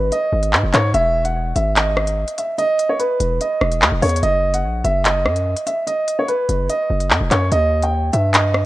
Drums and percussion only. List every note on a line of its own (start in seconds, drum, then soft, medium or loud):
0.12 closed hi-hat medium
0.43 closed hi-hat medium
0.53 clap loud
0.74 clap medium
0.74 closed hi-hat medium
0.94 closed hi-hat medium
1.25 closed hi-hat medium
1.56 closed hi-hat medium
1.76 clap loud
1.76 closed hi-hat medium
1.97 cross-stick medium
2.07 closed hi-hat medium
2.28 closed hi-hat medium
2.38 closed hi-hat medium
2.59 closed hi-hat medium
2.79 closed hi-hat loud
3.00 closed hi-hat medium
3.20 closed hi-hat medium
3.41 closed hi-hat medium
3.61 cross-stick medium
3.72 closed hi-hat medium
3.82 clap loud
4.02 closed hi-hat medium
4.02 open hi-hat medium
4.09 closed hi-hat medium
4.16 closed hi-hat medium
4.23 closed hi-hat medium
4.54 closed hi-hat medium
4.85 closed hi-hat medium
5.05 clap loud
5.05 closed hi-hat medium
5.26 cross-stick medium
5.36 closed hi-hat medium
5.57 closed hi-hat medium
5.67 closed hi-hat medium
5.87 closed hi-hat medium
6.08 closed hi-hat loud
6.28 closed hi-hat medium
6.49 closed hi-hat medium
6.70 closed hi-hat medium
7.00 closed hi-hat medium
7.11 clap loud
7.31 clap medium
7.31 closed hi-hat medium
7.52 closed hi-hat medium
7.83 closed hi-hat medium
8.13 closed hi-hat medium
8.34 clap loud
8.34 closed hi-hat medium
8.54 cross-stick medium